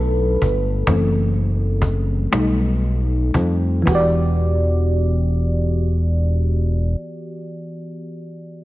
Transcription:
Already playing: analog synth bass B1, fm electric piano F#3 A3 D4 A4 B4
0.42 analog synth bass G1, cajon bass
0.87 analog synth bass F#1, fm electric piano E3 A3 C4, cajon bass
1.34 cajon slap
1.82 cajon bass
2.32 analog synth bass B1, fm electric piano G3 A3 D#4, cajon slap
2.82 cajon slap
3.34 analog synth bass F2, cajon bass
3.82 fm electric piano E3 B3
3.87 analog synth bass E1, fm electric piano F#4, cajon bass
3.92 fm electric piano G4 D5

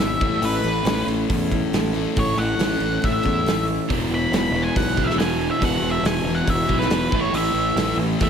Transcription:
Already playing: overdriven electric guitar E2 B2 E3, steel-string acoustic guitar E3 B3 E4, lead electric guitar E5
0.00 fingered electric bass G#1, steel-string acoustic guitar G#3
0.20 fingered electric bass A1, overdriven electric guitar A2 E3 A3, steel-string acoustic guitar A2, kick
0.41 fingered electric bass A1, steel-string acoustic guitar A2, lead electric guitar B4, open hi-hat
0.64 fingered electric bass A1, steel-string acoustic guitar A3
0.84 fingered electric bass A1, overdriven electric guitar A2 E3 A3, steel-string acoustic guitar C#4, snare, open hi-hat
1.07 fingered electric bass A1, steel-string acoustic guitar E3
1.30 fingered electric bass E2, steel-string acoustic guitar C#4, kick, open hi-hat
1.52 steel-string acoustic guitar E4, kick
1.72 fingered electric bass A1, steel-string acoustic guitar A3, snare, open hi-hat
1.93 overdriven electric guitar A2 E3 A3, steel-string acoustic guitar E4
2.16 fingered electric bass A1, steel-string acoustic guitar A2, lead electric guitar C#5, kick, open hi-hat
2.37 fingered electric bass A1, steel-string acoustic guitar A3, lead electric guitar F#5
2.58 fingered electric bass A1, overdriven electric guitar A2 E3 A3, steel-string acoustic guitar C#4, snare, open hi-hat
2.80 fingered electric bass A1, steel-string acoustic guitar E3
3.02 fingered electric bass A1, steel-string acoustic guitar C#4, lead electric guitar E5, kick, open hi-hat
3.23 fingered electric bass E2, steel-string acoustic guitar E4, kick
3.44 fingered electric bass A1, steel-string acoustic guitar A3, open hi-hat
3.49 snare
3.68 steel-string acoustic guitar E4
3.88 fingered electric bass E1, overdriven electric guitar E2 B2 E3, kick, open hi-hat
3.92 overdriven electric guitar E3
4.10 fingered electric bass E1
4.14 lead electric guitar B5
4.31 fingered electric bass E1, lead electric guitar B5, snare, open hi-hat
4.51 fingered electric bass E1, overdriven electric guitar E3
4.56 overdriven electric guitar E2 B2
4.63 lead electric guitar G#5
4.75 fingered electric bass B1, lead electric guitar F#5, kick, open hi-hat
4.96 overdriven electric guitar E2 B2 E3, kick
5.04 lead electric guitar E5
5.10 snare
5.16 fingered electric bass E1, overdriven electric guitar E2 B2 E3, lead electric guitar G#5, open hi-hat
5.21 snare
5.51 lead electric guitar E5
5.59 fingered electric bass E1, overdriven electric guitar E2 B2 E3, kick, open hi-hat
5.64 overdriven electric guitar E3, lead electric guitar F#5
5.81 fingered electric bass E1
5.91 lead electric guitar E5
6.03 fingered electric bass E1, lead electric guitar G#5, snare, open hi-hat
6.24 fingered electric bass E1, overdriven electric guitar E3
6.28 overdriven electric guitar E2 B2
6.35 lead electric guitar F#5
6.47 fingered electric bass E1, lead electric guitar E5, kick, open hi-hat
6.67 fingered electric bass B1, overdriven electric guitar E2 B2 E3, kick
6.79 lead electric guitar B4, snare
6.89 fingered electric bass E1, overdriven electric guitar E2 B2, snare, open hi-hat
6.93 overdriven electric guitar E3
7.11 fingered electric bass A1, overdriven electric guitar A2 E3 A3, kick
7.21 lead electric guitar C#5
7.32 fingered electric bass A1, lead electric guitar E5, open hi-hat
7.54 fingered electric bass A1
7.76 fingered electric bass A1, overdriven electric guitar A2 E3 A3, snare, open hi-hat
7.97 fingered electric bass A1
8.20 fingered electric bass E2, overdriven electric guitar A2 E3 A3, lead electric guitar E5, kick, open hi-hat

